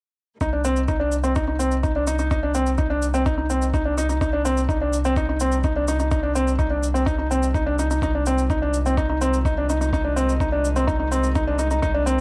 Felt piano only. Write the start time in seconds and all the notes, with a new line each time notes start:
0.41 D#4
0.53 D4
0.65 C4
0.88 D#4
1.00 D4
1.24 C4
1.36 D#4
1.48 D#4
1.59 C4
1.83 D#4
1.96 D4
2.07 D#4
2.19 D#4
2.31 D#4
2.43 D4
2.55 C4
2.78 D#4
2.90 D4
3.14 C4
3.26 D#4
3.38 D#4
3.50 C4
3.74 D#4
3.85 D4
3.98 D#4
4.09 D#4
4.21 D#4
4.33 D4
4.45 C4
4.69 D#4
4.81 D4
5.05 C4
5.17 D#4
5.29 D#4
5.41 C4
5.64 D#4
5.76 D4
5.88 D#4
6.00 D#4
6.11 D#4
6.23 D4
6.35 C4
6.59 D#4
6.70 D4
6.94 C4
7.06 D#4
7.18 D#4
7.31 C4
7.54 D#4
7.66 D4
7.79 D#4
7.91 D#4
8.03 D#4
8.15 D4
8.27 C4
8.50 D#4
8.62 D4
8.86 C4
8.98 D#4
9.10 D#4
9.21 C4
9.45 D#4
9.58 D4
9.70 D#4
9.81 D#4
9.93 D#4
10.05 D4
10.16 C4
10.41 D#4
10.52 D4
10.76 C4
10.87 D#4
11.00 D#4
11.12 C4
11.35 D#4
11.47 D4
11.59 D#4
11.71 D#4
11.82 D#4
11.94 D4
12.06 C4